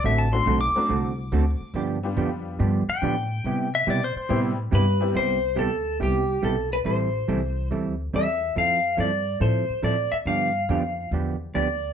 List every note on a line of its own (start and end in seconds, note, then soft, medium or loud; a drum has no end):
0.04 0.45 A1 medium
0.04 0.27 D3 medium
0.04 0.27 A3 medium
0.04 0.27 C4 medium
0.04 0.27 F#4 medium
0.04 0.27 A4 medium
0.04 0.19 E5 loud
0.18 0.32 A5 medium
0.32 0.45 F#3 medium
0.32 0.45 A3 medium
0.32 0.46 C4 medium
0.32 0.46 D4 medium
0.32 0.46 F#4 medium
0.32 0.60 C6 loud
0.46 0.73 B1 medium
0.46 0.58 D3 medium
0.46 0.59 A3 medium
0.46 0.59 C4 medium
0.46 0.59 F#4 medium
0.46 0.59 A4 medium
0.61 1.85 D6 loud
0.75 0.88 F#3 medium
0.75 0.88 A3 medium
0.75 0.88 C4 medium
0.75 0.89 D4 medium
0.75 0.89 F#4 medium
0.75 muted upright bass stroke soft
0.89 1.31 C2 medium
0.89 1.12 D3 medium
0.89 1.12 A3 medium
0.89 1.12 C4 medium
0.89 1.12 F#4 medium
0.89 1.13 A4 medium
1.32 1.58 D2 loud
1.32 1.44 D3 medium
1.32 1.44 A3 medium
1.32 1.45 C4 medium
1.32 1.45 F#4 medium
1.32 1.45 A4 medium
1.60 muted upright bass stroke soft
1.74 2.15 G2 medium
1.74 1.97 D3 medium
1.74 1.98 F3 medium
1.74 1.98 B3 medium
1.74 1.98 D4 medium
1.74 1.98 G4 medium
2.03 2.57 G3 medium
2.03 2.57 B3 medium
2.03 2.58 D4 medium
2.03 2.57 F4 medium
2.03 2.58 G4 medium
2.16 2.58 F2 loud
2.16 2.29 D3 medium
2.16 2.29 F3 medium
2.16 2.29 B3 medium
2.16 2.29 D4 medium
2.16 2.30 G4 medium
2.59 2.86 G2 medium
2.59 2.82 D3 medium
2.59 2.82 F3 medium
2.59 2.82 B3 medium
2.59 2.82 D4 medium
2.59 2.83 G4 medium
2.88 3.71 G5 loud
2.88 muted upright bass stroke soft
3.02 3.43 A2 loud
3.02 3.14 D3 medium
3.02 3.14 F3 medium
3.02 3.15 B3 medium
3.02 3.15 D4 medium
3.02 3.15 G4 medium
3.44 3.86 C3 medium
3.44 3.68 C3 medium
3.44 3.68 G3 medium
3.44 3.68 B3 medium
3.44 3.68 E4 medium
3.44 3.69 G4 medium
3.75 3.88 E5 loud
3.87 4.14 B2 loud
3.87 3.99 C3 medium
3.87 3.99 G3 medium
3.87 3.99 B3 medium
3.87 4.00 E4 medium
3.87 4.00 G4 medium
3.87 4.03 D5 loud
4.04 4.16 C5 loud
4.16 4.40 C5 loud
4.16 muted upright bass stroke soft
4.29 4.71 A2 medium
4.29 4.52 C3 medium
4.29 4.55 G3 medium
4.29 4.52 G3 medium
4.29 4.55 B3 medium
4.29 4.53 B3 medium
4.29 4.56 C4 medium
4.29 4.53 E4 medium
4.29 4.56 E4 medium
4.29 4.53 G4 medium
4.29 4.56 G4 medium
4.71 5.14 G2 loud
4.71 4.84 C3 medium
4.71 4.84 G3 medium
4.71 4.84 B3 medium
4.71 4.84 E4 medium
4.71 4.85 G4 medium
4.71 5.16 B4 loud
5.00 5.13 G3 medium
5.00 5.14 B3 medium
5.00 5.14 C4 medium
5.00 5.14 E4 medium
5.00 5.14 G4 medium
5.14 5.56 C2 medium
5.14 5.37 C3 medium
5.14 5.38 G3 medium
5.14 5.38 B3 medium
5.14 5.38 E4 medium
5.14 5.38 G4 medium
5.14 5.60 C5 loud
5.56 5.99 D2 medium
5.56 5.69 C3 medium
5.56 5.69 G3 medium
5.56 5.69 B3 medium
5.56 5.69 E4 medium
5.56 5.69 G4 medium
5.56 5.98 A4 medium
6.00 6.42 C2 medium
6.00 6.23 C3 medium
6.00 6.23 G3 medium
6.00 6.23 B3 medium
6.00 6.23 E4 medium
6.00 6.23 G4 medium
6.00 6.44 G4 medium
6.42 6.84 B1 medium
6.42 6.55 C3 medium
6.42 6.55 G3 medium
6.42 6.55 B3 medium
6.42 6.55 E4 medium
6.42 6.55 G4 medium
6.42 6.73 A4 medium
6.73 6.78 B4 medium
6.85 7.27 A1 medium
6.85 7.08 E3 medium
6.85 7.08 G3 medium
6.85 7.08 C4 medium
6.85 7.08 E4 medium
6.85 7.08 A4 medium
6.85 7.67 C5 medium
7.28 7.70 C2 medium
7.28 7.40 E3 medium
7.28 7.40 G3 medium
7.28 7.41 C4 medium
7.28 7.41 E4 medium
7.28 7.41 A4 medium
7.71 8.13 D2 medium
7.71 7.94 E3 medium
7.71 7.94 G3 medium
7.71 7.94 C4 medium
7.71 7.94 E4 medium
7.71 7.94 A4 medium
8.13 8.55 E2 medium
8.13 8.26 E3 medium
8.13 8.26 G3 medium
8.13 8.26 C4 medium
8.13 8.26 E4 medium
8.13 8.26 A4 medium
8.13 8.58 E5 medium
8.56 8.97 F2 medium
8.56 8.79 F3 medium
8.56 8.79 C4 medium
8.56 8.79 E4 medium
8.56 8.80 A4 medium
8.56 9.01 F5 loud
8.97 9.40 G2 medium
8.97 9.10 F3 medium
8.97 9.10 C4 medium
8.97 9.10 E4 medium
8.97 9.11 A4 medium
8.97 9.39 D5 medium
9.40 9.68 A2 medium
9.40 9.64 F3 medium
9.40 9.64 C4 medium
9.40 9.64 E4 medium
9.40 9.64 A4 medium
9.40 9.84 C5 medium
9.69 muted upright bass stroke soft
9.82 10.10 A2 medium
9.82 9.96 F3 medium
9.82 9.96 C4 medium
9.82 9.96 E4 medium
9.82 9.96 A4 medium
9.82 10.14 D5 medium
10.12 10.17 E5 medium
10.12 muted upright bass stroke soft
10.25 10.68 G2 medium
10.25 10.50 D3 medium
10.25 10.50 F3 medium
10.25 10.50 B3 medium
10.25 10.50 D4 medium
10.25 10.50 G4 medium
10.25 11.08 F5 medium
10.69 11.11 F2 medium
10.69 10.81 D3 medium
10.69 10.82 F3 medium
10.69 10.82 B3 medium
10.69 10.82 D4 medium
10.69 10.82 G4 medium
11.11 11.53 E2 medium
11.11 11.35 D3 medium
11.11 11.35 F3 medium
11.11 11.36 B3 medium
11.11 11.36 D4 medium
11.11 11.36 G4 medium
11.54 11.93 D2 medium
11.54 11.67 D3 medium
11.54 11.67 F3 medium
11.54 11.67 B3 medium
11.54 11.67 D4 medium
11.54 11.67 G4 medium
11.54 11.93 D5 medium